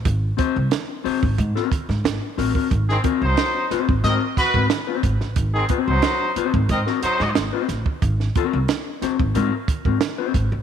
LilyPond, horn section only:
\new Staff \with { instrumentName = "Horn section" } { \time 4/4 \key aes \mixolydian \tempo 4 = 90 r1 | r16 <ees c' aes'>16 r16 <ges ees' c''>8. r8 <c' bes' ees''>16 r16 <ges' ces''>8 r4 | r16 <ees c' aes'>16 r16 <ges ees' c''>8. r8 <c' bes' ees''>16 r16 <ges ees' c''>8 r4 | r1 | }